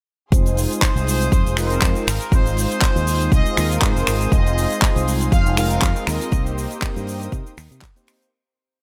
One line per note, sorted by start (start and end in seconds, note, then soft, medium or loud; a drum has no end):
0.32 0.65 F1 loud
0.32 1.54 G#3 medium
0.32 1.55 C4 medium
0.32 1.55 D#4 medium
0.32 1.55 F4 medium
0.32 2.05 G#4 medium
0.32 1.55 C5 medium
0.32 6.28 F5 medium
0.32 8.28 C6 medium
0.32 2.05 D#6 medium
0.32 kick loud
0.32 closed hi-hat medium
0.32 shaker medium
0.46 closed hi-hat soft
0.46 shaker soft
0.57 open hi-hat loud
0.57 shaker medium
0.71 closed hi-hat medium
0.71 shaker soft
0.82 1.07 C5 loud
0.82 kick loud
0.82 clap loud
0.82 closed hi-hat medium
0.82 shaker medium
0.96 1.28 C2 loud
0.96 closed hi-hat soft
0.96 shaker soft
1.07 1.54 C5 loud
1.07 open hi-hat loud
1.07 shaker medium
1.21 closed hi-hat medium
1.21 shaker medium
1.32 1.42 F2 medium
1.32 kick loud
1.32 closed hi-hat medium
1.32 shaker medium
1.45 1.77 F1 loud
1.45 closed hi-hat soft
1.45 shaker soft
1.57 2.06 G#3 medium
1.57 2.06 C4 medium
1.57 2.06 D#4 medium
1.57 2.06 F4 medium
1.57 2.06 A#4 loud
1.57 2.04 C5 loud
1.57 finger snap medium
1.57 open hi-hat loud
1.57 shaker medium
1.70 closed hi-hat medium
1.70 shaker soft
1.81 1.92 F2 loud
1.81 kick loud
1.81 clap loud
1.81 closed hi-hat medium
1.81 shaker medium
1.95 closed hi-hat soft
1.95 shaker soft
2.07 2.18 G#1 medium
2.07 6.28 G#4 medium
2.07 2.33 A#4 loud
2.07 6.28 D#6 medium
2.07 finger snap medium
2.07 open hi-hat loud
2.07 shaker medium
2.21 closed hi-hat medium
2.21 shaker soft
2.31 2.65 G#1 loud
2.31 3.54 G#3 medium
2.31 3.54 C4 medium
2.31 3.55 D#4 medium
2.31 3.55 F4 medium
2.31 3.55 C5 medium
2.31 2.57 C5 loud
2.31 kick loud
2.31 closed hi-hat medium
2.31 shaker medium
2.46 closed hi-hat soft
2.46 shaker soft
2.57 3.29 C5 loud
2.57 open hi-hat loud
2.57 shaker medium
2.71 closed hi-hat medium
2.71 shaker soft
2.82 kick loud
2.82 clap loud
2.82 closed hi-hat medium
2.82 shaker medium
2.96 3.28 D#2 loud
2.96 closed hi-hat soft
2.96 shaker soft
3.07 open hi-hat loud
3.07 shaker medium
3.21 closed hi-hat medium
3.21 shaker soft
3.32 3.42 C2 loud
3.32 3.57 D#5 loud
3.32 kick loud
3.32 closed hi-hat medium
3.32 shaker medium
3.46 closed hi-hat soft
3.46 shaker soft
3.56 3.77 D#2 medium
3.56 4.29 G#3 loud
3.56 4.29 C4 medium
3.56 4.29 D#4 medium
3.56 4.30 F4 medium
3.56 4.30 A#4 loud
3.56 3.69 D#5 loud
3.56 finger snap medium
3.56 open hi-hat loud
3.56 shaker medium
3.71 closed hi-hat medium
3.71 shaker medium
3.82 3.92 G#2 medium
3.82 4.29 C5 loud
3.82 kick loud
3.82 clap loud
3.82 closed hi-hat medium
3.82 shaker medium
3.96 4.04 F1 loud
3.96 closed hi-hat soft
3.96 shaker soft
4.07 4.27 G#1 medium
4.07 finger snap medium
4.07 open hi-hat loud
4.07 shaker medium
4.21 closed hi-hat medium
4.21 shaker soft
4.31 4.65 F1 loud
4.31 5.54 G#3 medium
4.31 5.54 C4 medium
4.31 5.54 D#4 medium
4.31 5.55 F4 medium
4.31 5.55 C5 medium
4.31 5.06 D#5 loud
4.31 kick loud
4.31 closed hi-hat medium
4.31 shaker medium
4.46 closed hi-hat soft
4.46 shaker soft
4.58 open hi-hat loud
4.58 shaker medium
4.70 closed hi-hat medium
4.70 shaker soft
4.82 kick loud
4.82 clap loud
4.82 closed hi-hat medium
4.82 shaker medium
4.96 5.28 C2 loud
4.96 closed hi-hat soft
4.96 shaker soft
5.08 open hi-hat loud
5.08 shaker medium
5.21 closed hi-hat medium
5.21 shaker medium
5.32 5.43 F2 loud
5.32 5.56 F5 loud
5.32 kick loud
5.32 closed hi-hat medium
5.32 shaker medium
5.46 5.78 F1 loud
5.46 closed hi-hat soft
5.46 shaker soft
5.56 6.29 G#3 loud
5.56 6.29 C4 medium
5.56 6.30 D#4 medium
5.56 6.30 F4 medium
5.56 6.30 A#4 loud
5.56 6.04 F5 loud
5.56 finger snap medium
5.56 open hi-hat loud
5.56 shaker medium
5.71 closed hi-hat medium
5.71 shaker medium
5.82 5.93 F2 loud
5.82 kick loud
5.82 clap loud
5.82 closed hi-hat medium
5.82 shaker medium
5.96 closed hi-hat soft
5.96 shaker soft
6.07 6.18 D#2 medium
6.07 6.58 D#5 loud
6.07 finger snap medium
6.07 open hi-hat loud
6.07 shaker medium
6.21 closed hi-hat medium
6.21 shaker medium
6.31 6.65 C2 loud
6.31 7.54 A#3 medium
6.31 7.54 C4 medium
6.31 7.55 D#4 medium
6.31 7.55 G4 medium
6.31 8.31 A#4 medium
6.31 7.55 C5 medium
6.31 8.31 G5 medium
6.31 8.30 D#6 medium
6.31 kick loud
6.31 closed hi-hat medium
6.31 shaker medium
6.46 closed hi-hat soft
6.46 shaker soft
6.58 open hi-hat loud
6.58 shaker medium
6.71 closed hi-hat medium
6.71 shaker medium
6.82 kick loud
6.82 clap loud
6.82 closed hi-hat medium
6.82 shaker medium
6.96 7.28 G2 loud
6.96 closed hi-hat soft
6.96 shaker medium
7.07 open hi-hat loud
7.07 shaker medium
7.22 closed hi-hat medium
7.22 shaker medium
7.32 7.43 C3 loud
7.32 kick loud
7.32 closed hi-hat medium
7.32 shaker medium
7.46 closed hi-hat soft
7.46 shaker medium
7.57 7.68 D#2 loud
7.57 finger snap medium
7.57 open hi-hat loud
7.57 shaker medium
7.71 7.79 C3 medium
7.71 closed hi-hat medium
7.71 shaker medium
7.81 kick loud
7.81 clap loud
7.81 closed hi-hat medium
7.81 shaker medium
7.95 8.29 A#3 medium
7.95 8.29 C4 medium
7.95 8.30 D#4 medium
7.95 8.30 G4 medium
7.95 8.30 C5 medium
7.95 closed hi-hat soft
7.95 shaker soft
8.07 finger snap medium
8.07 open hi-hat loud
8.07 shaker medium
8.22 closed hi-hat medium
8.22 shaker medium